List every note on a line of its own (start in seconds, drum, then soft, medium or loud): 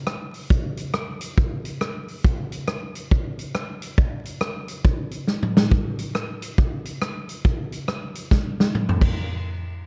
0.07 cross-stick loud
0.34 open hi-hat medium
0.50 kick loud
0.50 hi-hat pedal medium
0.77 closed hi-hat medium
0.94 cross-stick loud
1.21 closed hi-hat loud
1.38 kick loud
1.65 closed hi-hat medium
1.81 cross-stick loud
2.08 open hi-hat medium
2.24 kick loud
2.24 hi-hat pedal medium
2.52 closed hi-hat medium
2.68 cross-stick loud
2.95 closed hi-hat medium
3.11 kick loud
3.39 closed hi-hat medium
3.55 cross-stick loud
3.82 closed hi-hat loud
3.98 kick loud
4.25 closed hi-hat medium
4.41 cross-stick loud
4.68 closed hi-hat medium
4.85 kick loud
5.11 closed hi-hat medium
5.27 snare medium
5.42 mid tom medium
5.57 snare loud
5.71 kick loud
5.99 closed hi-hat medium
6.15 cross-stick loud
6.42 closed hi-hat loud
6.58 kick loud
6.85 closed hi-hat medium
7.01 cross-stick loud
7.29 closed hi-hat medium
7.45 kick loud
7.72 closed hi-hat medium
7.88 cross-stick loud
8.15 closed hi-hat loud
8.31 kick loud
8.31 snare medium
8.60 snare medium
8.75 mid tom medium
8.89 floor tom medium
9.01 kick loud
9.01 crash medium